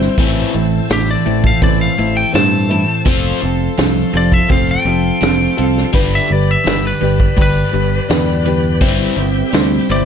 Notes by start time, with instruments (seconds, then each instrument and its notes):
Already playing: overdriven electric guitar G3 C4, steel-string acoustic guitar C4 E4 C5, tonewheel organ C5 G5 E6
0.01 snare
0.18 fingered electric bass A1, steel-string acoustic guitar A2 E3 A3 C4 E4 A4, overdriven electric guitar A2 E3 C4, tonewheel organ A5, kick, open hi-hat
0.54 fingered electric bass A1, overdriven electric guitar A2 E3, steel-string acoustic guitar A3 C4 E4 A4
0.89 fingered electric bass A1, overdriven electric guitar A2 E3, steel-string acoustic guitar A3 C4 E4 A4, snare, open hi-hat
0.93 lead electric guitar G4
1.11 lead electric guitar D5
1.25 fingered electric bass A1, overdriven electric guitar A2 E3, steel-string acoustic guitar A3 C4 E4 A4
1.44 lead electric guitar F5, kick
1.61 fingered electric bass A1, steel-string acoustic guitar A2 E3 A3 C4 E4 A4, overdriven electric guitar A2 E3, lead electric guitar D5, kick, open hi-hat
1.81 lead electric guitar F5
1.98 fingered electric bass A1, overdriven electric guitar A2 E3, steel-string acoustic guitar A3 C4 E4 A4
2.17 lead electric guitar G5
2.32 fingered electric bass G2, overdriven electric guitar A2 E3, steel-string acoustic guitar A3 C4 E4 A4, lead electric guitar A5, snare, open hi-hat
2.69 overdriven electric guitar A2 E3, steel-string acoustic guitar A3 C4 E4 A4
3.05 fingered electric bass F1, steel-string acoustic guitar F3 A3 C4 F4 A4, overdriven electric guitar F3 C4 F4, tonewheel organ A4 F5 C6, kick, open hi-hat
3.42 fingered electric bass F1, overdriven electric guitar F3 C4, steel-string acoustic guitar C4 F4 A4
3.78 fingered electric bass C2, overdriven electric guitar F3 C4, steel-string acoustic guitar A3 C4 F4 A4, snare, open hi-hat
4.13 fingered electric bass F1, overdriven electric guitar F3 C4, steel-string acoustic guitar C4 F4 A4
4.17 lead electric guitar D5
4.32 lead electric guitar E5, kick
4.48 fingered electric bass F1, steel-string acoustic guitar F3 A3 C4 F4 A4, overdriven electric guitar F3 C4, lead electric guitar F5, kick, open hi-hat
4.71 lead electric guitar G5
4.85 fingered electric bass F1, overdriven electric guitar F3 C4, steel-string acoustic guitar C4 F4 A4
5.21 fingered electric bass F1, overdriven electric guitar F3 C4, steel-string acoustic guitar A3 C4 F4 A4, snare, open hi-hat
5.57 fingered electric bass C2, overdriven electric guitar F3 C4, steel-string acoustic guitar C4 F4 A4
5.67 lead electric guitar F5
5.77 snare
5.93 fingered electric bass G1, overdriven electric guitar G2 D3 G3, steel-string acoustic guitar G3 D4 G4 B4, tonewheel organ G4 D5 B5, kick, open hi-hat
6.13 lead electric guitar E5, tambourine
6.29 fingered electric bass G1, overdriven electric guitar G2 D3, steel-string acoustic guitar D4 G4 B4, lead electric guitar D5
6.51 lead electric guitar E5
6.64 fingered electric bass G1, overdriven electric guitar G2 D3, steel-string acoustic guitar G3 D4 G4 B4, snare, open hi-hat, tambourine
6.85 lead electric guitar B4, tambourine
7.01 fingered electric bass G1, overdriven electric guitar G2 D3, steel-string acoustic guitar D4 G4 B4, tambourine
7.20 kick
7.36 fingered electric bass G1, overdriven electric guitar G2 D3, steel-string acoustic guitar G3 D4 G4 B4, kick, open hi-hat
7.42 lead electric guitar B4
7.57 tambourine
7.72 fingered electric bass G1, overdriven electric guitar G2 D3, steel-string acoustic guitar D4 G4 B4
7.93 tambourine
8.08 fingered electric bass E2, overdriven electric guitar G2 D3, steel-string acoustic guitar G3 D4 G4 B4, snare, open hi-hat, tambourine
8.30 tambourine
8.45 overdriven electric guitar G2 D3, steel-string acoustic guitar D4 G4 B4, tambourine
8.64 tambourine
8.81 fingered electric bass G1, steel-string acoustic guitar G3 C4 E4, overdriven electric guitar G3 C4 E4, tonewheel organ E5 G5, kick, open hi-hat
8.99 tambourine
9.16 fingered electric bass G1, overdriven electric guitar G3 C4, steel-string acoustic guitar C4 E4, tambourine
9.50 fingered electric bass D2, steel-string acoustic guitar G3 C4 E4 C5, overdriven electric guitar G3, open hi-hat, tambourine
9.54 overdriven electric guitar C4, snare
9.71 tambourine
9.89 fingered electric bass G1, overdriven electric guitar G3 C4, steel-string acoustic guitar C4 E4 C5, lead electric guitar D5, tambourine